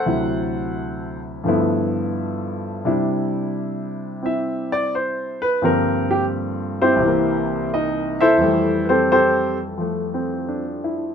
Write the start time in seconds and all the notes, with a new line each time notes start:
Already playing: A4 C5 F#5
0.06 D2 C3 F#3 E4
1.44 G2 D3 F3 A3
1.48 B3 E4
2.85 C3 G3 D4 E4
4.23 C4 E4 E5
4.72 D5
4.95 C5
5.42 B4
5.62 G2 D3 F3 G3 A#3 C4 A#4
6.11 G4
6.82 C4 E4 G4 C5
6.96 C2 C3
7.03 E3
7.07 A#3
7.74 D#4 D#5
8.21 E4 A4 C5 E5
8.38 F2 E3 G3
8.43 A3
8.85 B4
8.89 C4 G4 A4 C5
9.12 C4 G4 A4 C5
9.78 F3 A3
10.14 C4
10.49 D4
10.84 E4